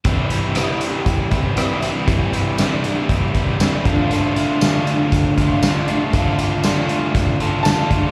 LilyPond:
<<
  \new Staff \with { instrumentName = "Upright piano" } { \time 4/4 \key c \major \tempo 4 = 118 r1 | r1 | r1 | r2. a''4 | }
  \new Staff \with { instrumentName = "Overdriven electric guitar" } { \time 4/4 \key c \major <c e g c' e'>8 <g c' e'>8 <c e g c' e'>4. <g c' e'>8 <e g c' e'>8 <g c' e'>8 | <c e g c' e'>8 <g c' e'>8 <c e g c' e'>4. <g c' e'>8 <e g c' e'>8 <d a d' f'>8 | <d a d' f'>8 <a d' f'>8 <d a d' f'>4. <a d' f'>8 <d a d' f'>8 <a d' f'>8 | <d a d' f'>8 <a d' f'>8 <d a d' f'>4. <a d' f'>8 <d a d' f'>8 <a d' f'>8 | }
  \new DrumStaff \with { instrumentName = "Drums" } \drummode { \time 4/4 <hh bd>8 hh8 <hh ss>8 hh8 <hh bd>8 <hh bd>8 <hh ss>8 hh8 | <hh bd>8 hh8 <hh sn tamb>8 hh8 <hh bd>8 <hh bd>8 <hh sn tamb>8 <hh bd>8 | hh8 hh8 <hh sn tamb>8 hh8 <hh bd>8 <hh bd>8 <hh sn tamb>8 hh8 | <hh bd>8 hh8 <hh sn tamb>8 hh8 <hh bd>8 hh8 <hh sn tamb>8 <hh bd>8 | }
>>